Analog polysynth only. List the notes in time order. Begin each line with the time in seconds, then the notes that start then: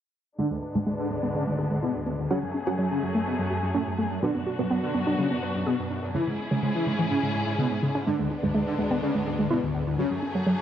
0.39 D4
0.51 D3
0.75 D3
0.87 D3
0.99 D4
1.11 D3
1.23 D3
1.34 C#4
1.47 D3
1.58 D3
1.71 D3
1.82 B3
1.95 D3
2.07 D3
2.19 D3
2.31 C#4
2.43 F#3
2.67 F#3
2.79 F#3
2.91 C#4
3.03 F#3
3.15 F#3
3.27 B3
3.39 F#3
3.51 F#3
3.63 F#3
3.75 A3
3.87 F#3
3.99 F#3
4.11 F#3
4.23 D4
4.35 F#3
4.59 F#3
4.71 F#3
4.83 D4
4.95 F#3
5.07 F#3
5.19 C#4
5.31 F#3
5.43 F#3
5.55 F#3
5.67 B3
5.79 F#3
5.91 F#3
6.03 F#3
6.15 E4
6.27 G#3
6.51 G#3
6.63 G#3
6.75 E4
6.87 G#3
6.99 G#3
7.11 C#4
7.23 G#3
7.35 G#3
7.47 G#3
7.59 B3
7.71 G#3
7.83 G#3
7.95 G#3
8.07 D4
8.19 D3
8.43 D3
8.55 D3
8.67 D4
8.79 D3
8.91 D3
9.03 C#4
9.15 D3
9.27 D3
9.39 D3
9.51 B3
9.63 D3
9.75 D3
9.87 D3
9.99 C#4
10.11 F#3
10.35 F#3
10.47 F#3